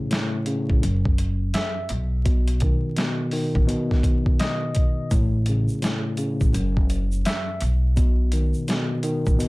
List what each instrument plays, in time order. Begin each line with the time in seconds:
Already playing: tine electric piano A2 C#3
0.11 tine electric piano A2, snare, closed hi-hat
0.46 tine electric piano C#3, closed hi-hat
0.69 upright bass A1, kick
0.82 upright bass F#1, tine electric piano F#2, closed hi-hat
1.05 kick
1.18 closed hi-hat
1.54 tine electric piano E5, snare, closed hi-hat
1.89 upright bass B1, closed hi-hat
2.25 tine electric piano B2, kick, closed hi-hat
2.47 closed hi-hat
2.60 tine electric piano D#3, kick, closed hi-hat
2.96 tine electric piano B2, snare, closed hi-hat
3.31 tine electric piano D#3, open hi-hat
3.55 upright bass A1, kick
3.67 tine electric piano B2, closed hi-hat
3.91 kick, snare
4.03 kick, closed hi-hat
4.26 kick
4.39 tine electric piano D#5, snare, closed hi-hat
4.75 kick, closed hi-hat
5.11 upright bass A1, tine electric piano A2, kick, closed hi-hat, shaker
5.46 tine electric piano C#3, closed hi-hat, shaker
5.68 shaker
5.82 tine electric piano A2, snare, closed hi-hat, shaker
6.17 tine electric piano C#3, closed hi-hat, shaker
6.41 upright bass A1, kick, shaker
6.53 upright bass F#1, tine electric piano F#2, closed hi-hat, shaker
6.77 kick
6.90 closed hi-hat, shaker
7.12 shaker
7.25 tine electric piano E5, snare, closed hi-hat, shaker
7.60 upright bass B1, closed hi-hat, shaker
7.96 tine electric piano B2, kick, closed hi-hat, shaker
8.32 tine electric piano D#3, closed hi-hat, shaker
8.54 shaker
8.68 tine electric piano B2, snare, closed hi-hat, shaker
9.03 tine electric piano D#3, closed hi-hat, shaker
9.26 upright bass A1, kick, shaker
9.38 tine electric piano B2, closed hi-hat, shaker